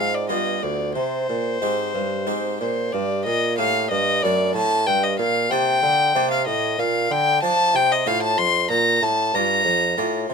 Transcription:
Already playing: G#2 C4 F4 G#4 F5
0.14 D5
0.29 G2 B3 F4 G4 D#5
0.62 D2 D5
0.95 C3 C5
1.29 A#2
1.61 G#2 C4 D#4 G4
1.94 G2
2.27 G#2 C4 D#4 G4
2.60 A#2 C5
2.92 G2 D5
3.25 A#2 D#5
3.58 A2 A#3 D4 G4 F5
3.91 G2 D#5
4.22 F#2 A3 D4 A4 D5
4.54 A2 A5
4.86 G2 G5
5.03 D#5
5.18 A#2 F5
5.50 C3 A#3 D4 D5 G5
5.82 D3
6.14 C3 A#3 D4 D5
6.31 F5
6.47 A2 D#5
6.79 A#2 F5
7.10 D3 G5
7.42 F3 D4 D5 A5
7.74 C3 G5
7.91 D#5
8.06 A2 F4 C5 F5
8.23 A5
8.38 F2 C6
8.69 A#2 A#5
9.02 A2 A5
9.34 G2 F4 D5 A#5
9.65 F2
9.97 A2 F4 D5
10.29 C3 C5

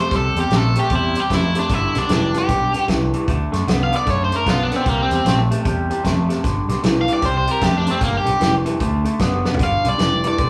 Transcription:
Already playing: A3
0.01 C5
0.11 C2 C3 G3, kick, snare, closed hi-hat
0.16 A4
0.35 E2 C3 G3, closed hi-hat
0.40 G4
0.50 A#1 C3 A3, snare, closed hi-hat
0.56 A4
0.75 C3 A3 G4, closed hi-hat
0.90 E2 C3 G3, kick, closed hi-hat
0.95 E4
1.15 C3 G3, closed hi-hat
1.20 G4
1.30 F2 C3 A3, kick, snare, closed hi-hat
1.34 E4
1.55 C3 A3, closed hi-hat
1.59 D4
1.69 G1 G2 D3, kick, closed hi-hat
1.74 E4
1.94 B1 G2 D3 D4, snare, closed hi-hat
2.09 F1 G2 E3, snare, closed hi-hat
2.13 D4
2.34 G2 E3 G4, closed hi-hat
2.48 B1 G2 D3, kick, closed hi-hat
2.74 G2 D3, closed hi-hat
2.88 C2 G2 E3, kick, snare, closed hi-hat
3.13 G2 E3, closed hi-hat
3.28 D2 D3 A3, kick, closed hi-hat
3.52 F#2 D3 A3, snare, closed hi-hat
3.67 C2 D3 B3, snare, closed hi-hat
3.83 F5
3.92 D3 B3, closed hi-hat
3.96 D5
4.06 F#2 D3 A3 C#5, kick, snare, closed hi-hat
4.24 C5
4.32 D3 A3, closed hi-hat
4.37 A#4
4.46 B1 D3 B3 F4, kick, snare, closed hi-hat
4.62 D4
4.71 D3 B3, snare, closed hi-hat
4.76 C4
4.86 C2 C3 G3 A#3, kick, closed hi-hat
5.02 C4
5.10 E2 C3 G3, closed hi-hat
5.25 A#1 C3 A3, snare, closed hi-hat
5.51 C3 A3, closed hi-hat
5.65 E2 C3 G3, kick, closed hi-hat
5.90 C3 G3, closed hi-hat
6.04 F2 C3 A3, kick, snare, closed hi-hat
6.29 C3 A3, snare, closed hi-hat
6.43 G1 G2 D3, kick, snare, closed hi-hat
6.68 B1 G2 D3, snare, closed hi-hat
6.82 B1 G2 E3, snare, closed hi-hat
7.01 F5
7.08 G2 E3, closed hi-hat
7.13 D5
7.22 C2 C3 G3 C5, kick, snare, closed hi-hat
7.37 C5
7.47 C3 G3 A#4, closed hi-hat
7.61 F2 C3 A3 G4, kick, snare, closed hi-hat
7.77 D4
7.87 C3 A3, closed hi-hat
7.91 C4
8.01 G1 G2 D3 A#3, kick, snare, closed hi-hat
8.17 G4
8.25 B1 G2 D3, closed hi-hat
8.40 F1 G2 E3, snare, closed hi-hat
8.65 G2 E3, closed hi-hat
8.80 D2 D3 A3, kick, closed hi-hat
9.05 D3 A3, closed hi-hat
9.19 F#1 D3 B3, kick, snare, closed hi-hat
9.45 D3 B3, snare
9.54 floor tom
9.59 G1 G2 D3, kick, snare, closed hi-hat
9.63 F5
9.85 B1 G2 D3 D5, closed hi-hat
9.98 F1 G2 E3, snare, closed hi-hat
10.24 G2 E3, closed hi-hat
10.28 D5
10.38 B1 G2 D3, kick, closed hi-hat

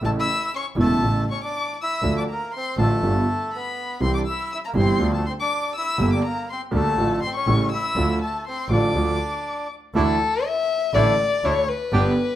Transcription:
0.02 A1 A2 C#3 E3 A3 E4 A5
0.06 A4
0.18 E4 E5 E6
0.55 C#4 C#5 C#6
0.76 E1 E2 C#3 E3 A3 E4 A4 A5
1.01 A1 A2 C#3 E3 A3 E4
1.31 C#4 C#5 C#6
1.43 D4 D5 D6
1.81 E4 E5 E6
2.02 D2 D3 F3 A3 F4
2.18 D4 D5 D6
2.29 A#3 A#4 A#5
2.55 C4 C5 C6
2.77 A1 A2 D3 F3 A3 F4 A5
2.81 A3 A4
3.02 G1 G2 D3 G3 B3 F4
3.54 B3 B4 B5
4.00 C2 C3 E3 G3 E4 C6
4.04 C4 C5
4.15 D4 D5 D6
4.26 E4 E5 E6
4.52 E4 E5 E6
4.65 A#3 A#4 A#5
4.75 G1 G2 C3 E3 G3 E4 C6
4.79 C4 C5
5.00 D2 D3 F3 A3 F4
5.14 A3 A4 A5
5.26 C4 C6
5.30 C5
5.40 D4 D5 D6
5.76 E4 E5 E6
5.98 G1 G2 D3 G3 A#3 G4
6.12 D4 D5 D6
6.25 A#3 A#4 A#5
6.50 C4 C5 C6
6.71 D2 D3 G3 A#3 G4 A5
6.75 A3 A4
6.97 A1 A2 D3 F3 A3 F4
7.22 C4 C5 C6
7.35 C#4 C#5 C#6
7.46 A1 A2 C#3 G3 A3 E4
7.72 E4 E5 E6
7.95 D2 D3 F3 A3 F4
8.22 A3 A4 A5
8.48 C4 C5 C6
8.68 A1 A2 D3 F3 A3 F4 D6
8.72 D4 D5
8.94 D2 D3 F3 A3 F4
9.94 D2 D3 E3 A3 D4 E4 A4
10.46 E5
10.93 A1 A2 D3 E3 A3 D4 E4 D5
11.43 D2 D3 A3 D4 E4 C#5
11.68 B4
11.92 G1 G2 D3 G3 B3 D4 G4

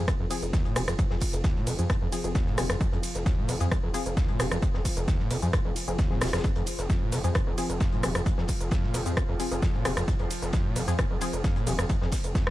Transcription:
Already playing: F3 C4 G#4
0.08 F2, kick, cross-stick, closed hi-hat, shaker
0.20 F1 F2
0.31 F3 C4 G#4, closed hi-hat, open hi-hat, ride, shaker
0.42 F1, closed hi-hat, shaker
0.53 D#2, kick, snare, closed hi-hat, shaker
0.65 A#2, closed hi-hat
0.76 D#1 C3 F3 C4 G#4, cross-stick, closed hi-hat, open hi-hat, ride, shaker
0.88 F1 F2, cross-stick, closed hi-hat, shaker
0.99 F2, kick, closed hi-hat, shaker
1.10 F1 F2, snare
1.20 kick, closed hi-hat, open hi-hat, ride, shaker
1.33 F1, closed hi-hat, shaker
1.44 D#2, kick, snare, closed hi-hat, shaker
1.56 A#2, snare
1.67 F1 C3, closed hi-hat, open hi-hat, ride, shaker
1.79 F2 F3 C4 G#4, closed hi-hat, shaker
1.90 F2, kick, cross-stick, closed hi-hat, shaker
2.02 F1 F2
2.12 F3 C4 G#4, closed hi-hat, open hi-hat, ride, shaker
2.24 F1 F3 C4 G#4, closed hi-hat, shaker
2.35 D#2, kick, snare, closed hi-hat, shaker
2.46 A#2, snare
2.58 D#1 C3 F3 C4 G#4, cross-stick, closed hi-hat, open hi-hat, ride, shaker
2.70 F1 F2, cross-stick, closed hi-hat, shaker
2.81 F2, kick, closed hi-hat, shaker
2.92 F1 F2, closed hi-hat
3.03 closed hi-hat, open hi-hat, ride, shaker
3.14 F1, snare, closed hi-hat, shaker
3.26 D#2, kick, snare, closed hi-hat, shaker
3.38 A#2
3.48 F1 C3, closed hi-hat, open hi-hat, ride, shaker
3.60 F2 F3 C4 G#4, closed hi-hat, shaker
3.72 F2, kick, cross-stick, closed hi-hat, shaker
3.83 F1 F2
3.94 F3 C4 G#4, closed hi-hat, open hi-hat, ride, shaker
4.06 F1, closed hi-hat, shaker
4.17 D#2, kick, snare, closed hi-hat, shaker
4.28 A#2, closed hi-hat
4.39 D#1 C3 F3 C4 G#4, cross-stick, closed hi-hat, open hi-hat, ride, shaker
4.51 F1 F2, cross-stick, closed hi-hat, shaker
4.62 F2, kick, closed hi-hat, shaker
4.74 F1 F2, snare
4.85 kick, closed hi-hat, open hi-hat, ride, shaker
4.96 F1, closed hi-hat, shaker
5.08 D#2, kick, snare, closed hi-hat, shaker
5.19 A#2, snare
5.31 F1 C3, closed hi-hat, open hi-hat, ride, shaker
5.42 F2 F3 C4 G#4, closed hi-hat, shaker
5.53 F2, kick, cross-stick, closed hi-hat, shaker
5.65 F1 F2
5.76 closed hi-hat, open hi-hat, ride, shaker
5.88 F1 F3 C4 G#4, closed hi-hat, shaker
5.98 D#2, kick, snare, closed hi-hat, shaker
6.11 A#2 F3 C4 G#4, snare
6.21 D#1 C3 F3 C4 G#4, cross-stick, snare, closed hi-hat, open hi-hat, ride, shaker
6.27 snare, closed hi-hat
6.33 F1 F2 F3 C4 G#4, cross-stick, snare, closed hi-hat, shaker
6.38 snare, closed hi-hat
6.44 F2, kick, closed hi-hat, shaker
6.56 F1 F2, closed hi-hat
6.66 closed hi-hat, open hi-hat, ride, shaker
6.79 F1, snare, closed hi-hat, shaker
6.90 F2, kick, snare, closed hi-hat, shaker
7.02 A#2
7.12 F1 C3, closed hi-hat, open hi-hat, ride, shaker
7.24 F2 F3 C4 G#4, closed hi-hat, shaker
7.35 F2, kick, cross-stick, closed hi-hat, shaker
7.47 F1 F2
7.58 F3 C4 G#4, closed hi-hat, open hi-hat, ride, shaker
7.70 F1, closed hi-hat, shaker
7.80 F2, kick, snare, closed hi-hat, shaker
7.92 A#2, closed hi-hat
8.03 D#1 C3 F3 C4 G#4, cross-stick, closed hi-hat, open hi-hat, ride, shaker
8.15 F1 F2, cross-stick, closed hi-hat, shaker
8.26 F2, kick, closed hi-hat, shaker
8.38 F1 F2, snare
8.48 kick, closed hi-hat, open hi-hat, ride, shaker
8.61 F1, closed hi-hat, shaker
8.71 F2, kick, snare, closed hi-hat, shaker
8.83 A#2, snare
8.94 F1 C3, closed hi-hat, open hi-hat, ride, shaker
9.06 F2 F3 C4 G#4, closed hi-hat, shaker
9.17 F2, kick, cross-stick, closed hi-hat, shaker
9.29 F1 F2
9.40 F3 C4 G#4, closed hi-hat, open hi-hat, ride, shaker
9.51 F1 F3 C4 G#4, closed hi-hat, shaker
9.62 F2, kick, snare, closed hi-hat, shaker
9.73 A#2, snare
9.85 D#1 C3 F3 C4 G#4, cross-stick, closed hi-hat, open hi-hat, ride, shaker
9.97 F1 F2, cross-stick, closed hi-hat, shaker
10.08 F2, kick, closed hi-hat, shaker
10.19 F1 F2, closed hi-hat
10.31 closed hi-hat, open hi-hat, ride, shaker
10.42 F1, snare, closed hi-hat, shaker
10.53 F2, kick, snare, closed hi-hat, shaker
10.65 A#2
10.76 F1 C3, closed hi-hat, open hi-hat, ride, shaker
10.88 F2 F3 C4 G#4, closed hi-hat, shaker
10.99 F2, kick, cross-stick, closed hi-hat, shaker
11.11 F1 F2
11.21 F3 C4 G#4, closed hi-hat, open hi-hat, ride, shaker
11.33 F1, closed hi-hat, shaker
11.44 F2, kick, snare, closed hi-hat, shaker
11.56 A#2, closed hi-hat
11.67 D#1 C3 F3 C4 G#4, closed hi-hat, open hi-hat, ride, shaker
11.79 F1 F2, cross-stick, closed hi-hat, shaker
11.89 F2, kick, closed hi-hat, shaker
12.01 F1 F2, snare
12.12 kick, snare, closed hi-hat, open hi-hat, ride, shaker
12.24 F1, closed hi-hat, shaker
12.35 F2, kick, snare, closed hi-hat, shaker
12.47 A#2, cross-stick

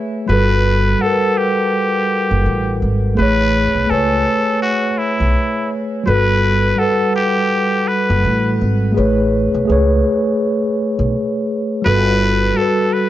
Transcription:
Already playing: A3 B4 E5 G#5
0.26 G1 G3 F#4 B4
0.31 A4 B4
0.98 G3 A4 F#5
1.03 A4 A#4
1.12 B4
1.38 G4
2.31 F#1
2.46 A1
2.82 G#1
3.15 A1 A3 G#4 B4
3.20 B4 C#5
3.75 B1
3.87 C#2 A3 A4 G#5
3.92 B4 C#5
4.62 F#4
4.98 E4
5.20 B1
6.03 G1 G3 F#4 B4
6.08 A4 B4
6.76 G3 A4 F#5
6.81 A4 B4
7.16 G4
7.88 B4
8.10 F#1
8.25 A1
8.61 G#1
8.92 A3 G#4
8.97 A1 B4 C#5
9.54 B1
9.65 A3 G#4
9.69 C#2 B4 C#5
10.99 B1
11.82 G1 G3 F#4 B4
11.87 A4 B4
12.54 G3 F#4 A4
12.59 A4 B4
12.93 B4

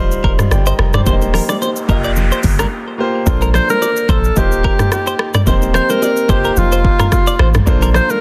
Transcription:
Already playing: D#1 G3 D#4 F4 C5
0.12 shaker
0.24 D#1 A#4, kick
0.39 cross-stick, mid tom, low bongo, shaker
0.51 G1 D5 G5, cross-stick, high bongo, shaker
0.66 A#4 C5 D#5, shaker
0.79 F1, cross-stick
0.94 G4 C5 D5, cross-stick, mid tom, low bongo, shaker
1.05 D#1 A#3 D4 G4 C5, kick, noise sweep, low conga, shaker
1.13 D#4
1.22 low bongo, shaker
1.34 A#4, cross-stick, open hi-hat, low conga, shaker
1.49 D5, cross-stick, low bongo, shaker
1.62 C5, high bongo, shaker
1.76 shaker
1.88 F1 A#3 F4 G4 A#4 D#5, kick, high bongo, shaker
2.04 D5, shaker
2.16 low conga, shaker
2.32 C5, shaker
2.43 G1, kick, open hi-hat, shaker
2.59 A#4, cross-stick, low bongo, shaker
2.98 A#3 F4 G4 C5
3.25 A#1 A#3 D4 F4 A4 C5, kick, low conga, shaker
3.42 A#4, low bongo, shaker
3.53 A#3 D4 F4 A#4 C5, cross-stick, low conga, shaker
3.69 A#4, low bongo, shaker
3.82 D5, high bongo, shaker
3.96 shaker
4.09 A#1 A4 C5, kick, high bongo, shaker
4.24 shaker
4.36 D#1 A#3 D#4 F4 G4 C5, kick, low conga, shaker
4.52 shaker
4.64 A#4, kick
4.79 cross-stick, mid tom, low bongo, shaker
4.92 G4, cross-stick, high bongo, shaker
5.07 C5, shaker
5.19 cross-stick
5.34 D5, cross-stick, mid tom, low bongo, shaker
5.46 D#1 A#3 C4 D#4 G4 C5, kick, low conga, shaker
5.62 low bongo, shaker
5.73 A#3 C4 D#4 G4 A#4 C5, cross-stick, low conga, shaker
5.90 A#4 C5, low bongo, shaker
6.02 D5, high bongo, shaker
6.17 shaker
6.28 F1 A#3 D#4 F4 G4 C5, kick, high bongo, shaker
6.44 A#4, shaker
6.57 F1 F4, low conga, shaker
6.72 C5, shaker
6.85 kick
7.00 A#4, cross-stick, mid tom, low bongo, shaker
7.12 F4, kick, cross-stick, high bongo, shaker
7.27 D5, shaker
7.39 A1 C5, cross-stick
7.54 cross-stick, mid tom, low bongo, shaker
7.66 A#1 A#3 D4 F4 A4 C5, kick, low conga, shaker
7.82 A#4, low bongo, shaker
7.93 A#3 D4 F4 A#4 C5, cross-stick, low conga, shaker
8.10 A#4, low bongo, shaker

